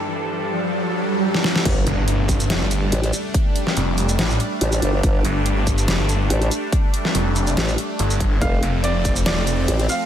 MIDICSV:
0, 0, Header, 1, 9, 480
1, 0, Start_track
1, 0, Tempo, 422535
1, 1880, Time_signature, 4, 2, 24, 8
1, 11424, End_track
2, 0, Start_track
2, 0, Title_t, "Grand piano"
2, 0, Program_c, 0, 0
2, 9559, Note_on_c, 0, 77, 101
2, 9887, Note_off_c, 0, 77, 0
2, 10037, Note_on_c, 0, 74, 93
2, 10366, Note_off_c, 0, 74, 0
2, 10518, Note_on_c, 0, 74, 97
2, 11149, Note_off_c, 0, 74, 0
2, 11239, Note_on_c, 0, 77, 94
2, 11424, Note_off_c, 0, 77, 0
2, 11424, End_track
3, 0, Start_track
3, 0, Title_t, "Supersaw synth"
3, 0, Program_c, 1, 81
3, 0, Note_on_c, 1, 43, 76
3, 0, Note_on_c, 1, 55, 67
3, 0, Note_on_c, 1, 62, 69
3, 0, Note_on_c, 1, 69, 83
3, 1834, Note_off_c, 1, 43, 0
3, 1834, Note_off_c, 1, 55, 0
3, 1834, Note_off_c, 1, 62, 0
3, 1834, Note_off_c, 1, 69, 0
3, 1880, Note_on_c, 1, 55, 82
3, 1880, Note_on_c, 1, 57, 71
3, 1880, Note_on_c, 1, 62, 88
3, 9514, Note_off_c, 1, 62, 0
3, 9515, Note_off_c, 1, 55, 0
3, 9559, Note_on_c, 1, 53, 79
3, 9559, Note_on_c, 1, 60, 90
3, 11424, Note_off_c, 1, 53, 0
3, 11424, Note_off_c, 1, 57, 0
3, 11424, Note_off_c, 1, 60, 0
3, 11424, End_track
4, 0, Start_track
4, 0, Title_t, "Wobble bass"
4, 0, Program_c, 2, 39
4, 1879, Note_on_c, 2, 31, 102
4, 2102, Note_off_c, 2, 31, 0
4, 3320, Note_on_c, 2, 33, 104
4, 3542, Note_off_c, 2, 33, 0
4, 5239, Note_on_c, 2, 33, 105
4, 5462, Note_off_c, 2, 33, 0
4, 5480, Note_on_c, 2, 31, 98
4, 5702, Note_off_c, 2, 31, 0
4, 5719, Note_on_c, 2, 31, 100
4, 5941, Note_off_c, 2, 31, 0
4, 7160, Note_on_c, 2, 33, 102
4, 7382, Note_off_c, 2, 33, 0
4, 8600, Note_on_c, 2, 33, 100
4, 8822, Note_off_c, 2, 33, 0
4, 9560, Note_on_c, 2, 29, 99
4, 9782, Note_off_c, 2, 29, 0
4, 11000, Note_on_c, 2, 33, 105
4, 11222, Note_off_c, 2, 33, 0
4, 11424, End_track
5, 0, Start_track
5, 0, Title_t, "Detuned saw bass"
5, 0, Program_c, 3, 39
5, 2119, Note_on_c, 3, 31, 94
5, 2821, Note_off_c, 3, 31, 0
5, 2839, Note_on_c, 3, 29, 102
5, 2947, Note_off_c, 3, 29, 0
5, 2968, Note_on_c, 3, 31, 100
5, 3302, Note_off_c, 3, 31, 0
5, 4279, Note_on_c, 3, 29, 101
5, 4742, Note_off_c, 3, 29, 0
5, 4760, Note_on_c, 3, 33, 104
5, 4982, Note_off_c, 3, 33, 0
5, 5960, Note_on_c, 3, 31, 94
5, 6662, Note_off_c, 3, 31, 0
5, 6679, Note_on_c, 3, 29, 99
5, 6787, Note_off_c, 3, 29, 0
5, 6807, Note_on_c, 3, 31, 100
5, 7142, Note_off_c, 3, 31, 0
5, 8119, Note_on_c, 3, 29, 98
5, 8582, Note_off_c, 3, 29, 0
5, 9080, Note_on_c, 3, 31, 99
5, 9542, Note_off_c, 3, 31, 0
5, 9800, Note_on_c, 3, 29, 98
5, 10502, Note_off_c, 3, 29, 0
5, 10519, Note_on_c, 3, 27, 98
5, 10627, Note_off_c, 3, 27, 0
5, 10648, Note_on_c, 3, 29, 102
5, 10982, Note_off_c, 3, 29, 0
5, 11424, End_track
6, 0, Start_track
6, 0, Title_t, "Impact"
6, 0, Program_c, 4, 103
6, 1879, Note_on_c, 4, 60, 73
6, 3799, Note_off_c, 4, 60, 0
6, 11424, End_track
7, 0, Start_track
7, 0, Title_t, "Riser"
7, 0, Program_c, 5, 103
7, 0, Note_on_c, 5, 60, 72
7, 1880, Note_off_c, 5, 60, 0
7, 11424, End_track
8, 0, Start_track
8, 0, Title_t, "Swell"
8, 0, Program_c, 6, 103
8, 919, Note_on_c, 6, 60, 76
8, 1879, Note_off_c, 6, 60, 0
8, 11424, End_track
9, 0, Start_track
9, 0, Title_t, "Drums"
9, 1528, Note_on_c, 9, 38, 51
9, 1639, Note_off_c, 9, 38, 0
9, 1639, Note_on_c, 9, 38, 79
9, 1753, Note_off_c, 9, 38, 0
9, 1768, Note_on_c, 9, 38, 76
9, 1879, Note_on_c, 9, 36, 122
9, 1879, Note_on_c, 9, 42, 84
9, 1879, Note_on_c, 9, 49, 103
9, 1881, Note_off_c, 9, 38, 0
9, 1993, Note_off_c, 9, 36, 0
9, 1993, Note_off_c, 9, 42, 0
9, 1993, Note_off_c, 9, 49, 0
9, 2120, Note_on_c, 9, 42, 57
9, 2234, Note_off_c, 9, 42, 0
9, 2360, Note_on_c, 9, 42, 83
9, 2473, Note_off_c, 9, 42, 0
9, 2599, Note_on_c, 9, 36, 63
9, 2600, Note_on_c, 9, 42, 54
9, 2600, Note_on_c, 9, 82, 56
9, 2712, Note_off_c, 9, 36, 0
9, 2714, Note_off_c, 9, 42, 0
9, 2714, Note_off_c, 9, 82, 0
9, 2727, Note_on_c, 9, 42, 40
9, 2727, Note_on_c, 9, 82, 86
9, 2840, Note_off_c, 9, 42, 0
9, 2840, Note_on_c, 9, 38, 115
9, 2840, Note_on_c, 9, 42, 79
9, 2841, Note_off_c, 9, 82, 0
9, 2953, Note_off_c, 9, 38, 0
9, 2953, Note_off_c, 9, 42, 0
9, 3079, Note_on_c, 9, 42, 66
9, 3079, Note_on_c, 9, 82, 59
9, 3193, Note_off_c, 9, 42, 0
9, 3193, Note_off_c, 9, 82, 0
9, 3319, Note_on_c, 9, 42, 80
9, 3433, Note_off_c, 9, 42, 0
9, 3448, Note_on_c, 9, 42, 37
9, 3560, Note_off_c, 9, 42, 0
9, 3560, Note_on_c, 9, 42, 55
9, 3560, Note_on_c, 9, 82, 81
9, 3673, Note_off_c, 9, 42, 0
9, 3673, Note_off_c, 9, 82, 0
9, 3799, Note_on_c, 9, 36, 125
9, 3799, Note_on_c, 9, 42, 85
9, 3912, Note_off_c, 9, 36, 0
9, 3913, Note_off_c, 9, 42, 0
9, 4040, Note_on_c, 9, 42, 59
9, 4153, Note_off_c, 9, 42, 0
9, 4167, Note_on_c, 9, 38, 37
9, 4280, Note_on_c, 9, 42, 80
9, 4281, Note_off_c, 9, 38, 0
9, 4393, Note_off_c, 9, 42, 0
9, 4519, Note_on_c, 9, 42, 54
9, 4519, Note_on_c, 9, 82, 54
9, 4633, Note_off_c, 9, 42, 0
9, 4633, Note_off_c, 9, 82, 0
9, 4647, Note_on_c, 9, 42, 39
9, 4647, Note_on_c, 9, 82, 83
9, 4758, Note_off_c, 9, 42, 0
9, 4758, Note_on_c, 9, 38, 116
9, 4758, Note_on_c, 9, 42, 83
9, 4760, Note_off_c, 9, 82, 0
9, 4872, Note_off_c, 9, 38, 0
9, 4872, Note_off_c, 9, 42, 0
9, 4886, Note_on_c, 9, 82, 60
9, 4999, Note_on_c, 9, 42, 65
9, 5000, Note_off_c, 9, 82, 0
9, 5112, Note_off_c, 9, 42, 0
9, 5239, Note_on_c, 9, 42, 84
9, 5352, Note_off_c, 9, 42, 0
9, 5367, Note_on_c, 9, 42, 38
9, 5367, Note_on_c, 9, 82, 75
9, 5479, Note_off_c, 9, 42, 0
9, 5479, Note_on_c, 9, 42, 57
9, 5481, Note_off_c, 9, 82, 0
9, 5593, Note_off_c, 9, 42, 0
9, 5719, Note_on_c, 9, 36, 127
9, 5719, Note_on_c, 9, 42, 81
9, 5833, Note_off_c, 9, 36, 0
9, 5833, Note_off_c, 9, 42, 0
9, 5959, Note_on_c, 9, 42, 56
9, 6073, Note_off_c, 9, 42, 0
9, 6200, Note_on_c, 9, 42, 79
9, 6313, Note_off_c, 9, 42, 0
9, 6439, Note_on_c, 9, 36, 69
9, 6440, Note_on_c, 9, 42, 53
9, 6440, Note_on_c, 9, 82, 54
9, 6553, Note_off_c, 9, 36, 0
9, 6554, Note_off_c, 9, 42, 0
9, 6554, Note_off_c, 9, 82, 0
9, 6568, Note_on_c, 9, 42, 40
9, 6568, Note_on_c, 9, 82, 78
9, 6680, Note_off_c, 9, 42, 0
9, 6680, Note_on_c, 9, 38, 122
9, 6680, Note_on_c, 9, 42, 80
9, 6682, Note_off_c, 9, 82, 0
9, 6794, Note_off_c, 9, 38, 0
9, 6794, Note_off_c, 9, 42, 0
9, 6920, Note_on_c, 9, 42, 65
9, 6920, Note_on_c, 9, 82, 53
9, 7034, Note_off_c, 9, 42, 0
9, 7034, Note_off_c, 9, 82, 0
9, 7160, Note_on_c, 9, 42, 81
9, 7274, Note_off_c, 9, 42, 0
9, 7288, Note_on_c, 9, 42, 38
9, 7400, Note_off_c, 9, 42, 0
9, 7400, Note_on_c, 9, 42, 57
9, 7400, Note_on_c, 9, 82, 81
9, 7514, Note_off_c, 9, 42, 0
9, 7514, Note_off_c, 9, 82, 0
9, 7639, Note_on_c, 9, 36, 125
9, 7640, Note_on_c, 9, 42, 81
9, 7753, Note_off_c, 9, 36, 0
9, 7754, Note_off_c, 9, 42, 0
9, 7880, Note_on_c, 9, 42, 55
9, 7994, Note_off_c, 9, 42, 0
9, 8008, Note_on_c, 9, 38, 37
9, 8120, Note_on_c, 9, 42, 78
9, 8122, Note_off_c, 9, 38, 0
9, 8234, Note_off_c, 9, 42, 0
9, 8361, Note_on_c, 9, 42, 52
9, 8361, Note_on_c, 9, 82, 52
9, 8474, Note_off_c, 9, 42, 0
9, 8474, Note_off_c, 9, 82, 0
9, 8489, Note_on_c, 9, 42, 38
9, 8489, Note_on_c, 9, 82, 79
9, 8601, Note_off_c, 9, 42, 0
9, 8601, Note_on_c, 9, 38, 121
9, 8601, Note_on_c, 9, 42, 78
9, 8603, Note_off_c, 9, 82, 0
9, 8714, Note_off_c, 9, 38, 0
9, 8714, Note_off_c, 9, 42, 0
9, 8728, Note_on_c, 9, 82, 58
9, 8840, Note_on_c, 9, 42, 62
9, 8842, Note_off_c, 9, 82, 0
9, 8954, Note_off_c, 9, 42, 0
9, 9080, Note_on_c, 9, 42, 81
9, 9193, Note_off_c, 9, 42, 0
9, 9208, Note_on_c, 9, 42, 35
9, 9208, Note_on_c, 9, 82, 74
9, 9320, Note_off_c, 9, 42, 0
9, 9320, Note_on_c, 9, 36, 65
9, 9320, Note_on_c, 9, 42, 54
9, 9322, Note_off_c, 9, 82, 0
9, 9433, Note_off_c, 9, 36, 0
9, 9433, Note_off_c, 9, 42, 0
9, 9560, Note_on_c, 9, 36, 120
9, 9560, Note_on_c, 9, 42, 78
9, 9673, Note_off_c, 9, 36, 0
9, 9674, Note_off_c, 9, 42, 0
9, 9799, Note_on_c, 9, 42, 54
9, 9913, Note_off_c, 9, 42, 0
9, 10040, Note_on_c, 9, 42, 76
9, 10154, Note_off_c, 9, 42, 0
9, 10280, Note_on_c, 9, 36, 64
9, 10281, Note_on_c, 9, 42, 52
9, 10281, Note_on_c, 9, 82, 53
9, 10393, Note_off_c, 9, 36, 0
9, 10394, Note_off_c, 9, 42, 0
9, 10394, Note_off_c, 9, 82, 0
9, 10408, Note_on_c, 9, 42, 37
9, 10408, Note_on_c, 9, 82, 78
9, 10520, Note_off_c, 9, 42, 0
9, 10520, Note_on_c, 9, 38, 116
9, 10520, Note_on_c, 9, 42, 75
9, 10521, Note_off_c, 9, 82, 0
9, 10634, Note_off_c, 9, 38, 0
9, 10634, Note_off_c, 9, 42, 0
9, 10760, Note_on_c, 9, 42, 60
9, 10760, Note_on_c, 9, 82, 52
9, 10873, Note_off_c, 9, 42, 0
9, 10873, Note_off_c, 9, 82, 0
9, 10999, Note_on_c, 9, 42, 81
9, 11113, Note_off_c, 9, 42, 0
9, 11127, Note_on_c, 9, 42, 34
9, 11239, Note_off_c, 9, 42, 0
9, 11239, Note_on_c, 9, 42, 49
9, 11239, Note_on_c, 9, 82, 76
9, 11352, Note_off_c, 9, 42, 0
9, 11352, Note_off_c, 9, 82, 0
9, 11424, End_track
0, 0, End_of_file